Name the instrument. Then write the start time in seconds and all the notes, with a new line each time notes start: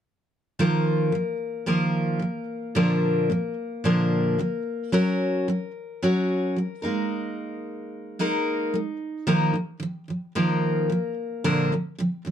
steel-string acoustic guitar
0.59 D#3 F3 A#3 F4 A#4
1.12 D#3 F3
1.66 D#3 F3 A#3 F4 A#4
2.19 D#3 F3
2.75 A#2 D3 F3 A#3 D4 A#4
3.30 A#2 D3 F3
3.84 A#2 D3 F3 A#3 D4 A#4
4.38 A#2 D3 F3
4.92 F#3 C#4 F#4 A#4
5.48 F#3 C#4
6.03 F#3 C#4 F#4 A#4
6.56 F#3 C#4
6.82 G#3 A#3 D#4 A#4
8.19 G#3 A#3 D#4 A#4
8.74 G#3 A#3
9.27 D#3 F3 A#3 D#4 A#4
9.54 D#3 F3
9.80 D#3 F3
10.08 D#3 F3
10.35 D#3 F3 A#3 D#4 A#4
10.90 D#3 F3
11.44 A#2 D3 F3 A#3 D4 A#4
11.72 A#2 D3 F3
11.99 A#2 D3 F3
12.25 A#2 D3 F3